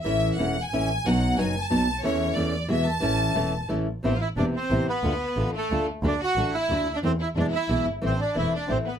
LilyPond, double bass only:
\new Staff \with { instrumentName = "Double bass" } { \clef bass \time 3/4 \key a \major \tempo 4 = 180 a,,4 e,,4 a,,4 | b,,4 fis,,4 b,,4 | e,4 e,4 e,4 | a,,4 e,,4 a,,4 |
\key a \minor a,,8 r8 e,,8 r8 a,,8 r8 | d,8 r8 a,,8 r8 d,8 r8 | d,8 r8 a,,8 r8 d,8 d,8 | e,8 r8 e,8 r8 b,,8 g,,8 |
a,,8 r8 e,,8 r8 a,,8 r8 | }